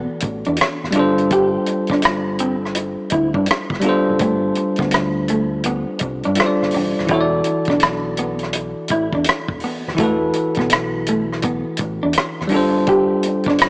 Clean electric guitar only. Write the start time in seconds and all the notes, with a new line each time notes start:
0.24 muted clean electric guitar stroke
0.47 D4
0.96 D4
1.33 G4
1.69 muted clean electric guitar stroke
1.91 D4
2.40 C4
2.77 muted clean electric guitar stroke
3.12 E4
3.35 D4
3.85 B3
4.21 A3
4.57 muted clean electric guitar stroke
4.80 B3
5.30 A3
5.66 B3
6.03 muted clean electric guitar stroke
6.25 D4
6.74 D4
7.11 E4
7.47 muted clean electric guitar stroke
7.70 D4
8.19 B3
8.56 muted clean electric guitar stroke
8.91 E4
9.15 D4
9.64 B3
10.00 A3
10.36 muted clean electric guitar stroke
10.59 B3
11.09 A3
11.44 B3
11.81 muted clean electric guitar stroke
12.03 D4
12.52 D4
12.89 G4
13.26 muted clean electric guitar stroke
13.48 D4